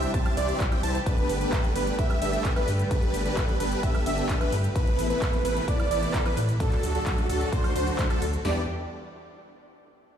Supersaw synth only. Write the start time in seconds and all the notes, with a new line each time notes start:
Already playing: C4 E4 G4 C5 E5
0.14 C4 E4 G4 C5 A5
0.37 C4 E4 G4 C5 D5
0.72 C4 E4 G4 C5 G5
0.83 C4 E4 G4 C5 A5
1.06 B3 D4 G4 A4 B4
1.41 B3 D4 G4 A4 B4
1.76 B3 D4 G4 A4 B4
1.99 B3 D4 G4 A4 E5
2.22 B3 D4 G4 A4 E5
2.56 B3 D4 G4 A4 B4
2.91 B3 D4 G4 A4 B4
3.26 B3 D4 G4 A4 B4
3.60 B3 D4 G4 A4 B4
3.83 B3 D4 G4 A4 E5
4.06 B3 D4 G4 A4 E5
4.41 B3 D4 G4 A4 B4
4.76 B3 C4 E4 A4 B4
5.10 B3 C4 E4 A4 B4
5.45 B3 C4 E4 A4 B4
5.68 B3 C4 E4 A4 D5
5.91 B3 C4 E4 A4 D5
6.26 B3 C4 E4 A4 B4
6.60 F#3 A3 D4 F#4 A4
6.95 F#3 A3 D4 F#4 A4
7.29 F#3 A3 D4 F#4 A4
7.53 F#3 A3 F#4 C5
7.76 F#3 A3 D4 F#4 C5
8.10 F#3 A3 D4 F#4 A4
8.45 D4 E4 G4 B4 D5